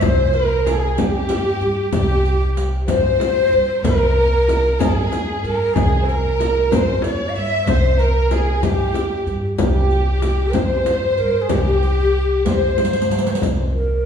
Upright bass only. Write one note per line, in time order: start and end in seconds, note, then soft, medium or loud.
0.03 0.94 C2 loud
0.97 1.57 G2 medium
1.61 1.91 G2 medium
1.93 2.84 C2 loud
2.89 3.49 G2 medium
3.52 3.82 G2 medium
3.83 4.75 C2 loud
4.80 5.40 G2 medium
5.43 5.73 G2 medium
5.75 6.67 C2 medium
6.72 7.32 G2 medium
7.35 7.65 G2 medium
7.66 8.59 C2 loud
8.62 9.22 G2 medium
9.26 9.56 G2 medium
9.59 10.50 C2 loud
10.54 11.14 G2 medium
11.19 11.48 G2 medium
11.51 12.42 C2 loud
12.46 13.06 G2 medium
13.10 13.40 G2 medium
13.41 14.06 C2 medium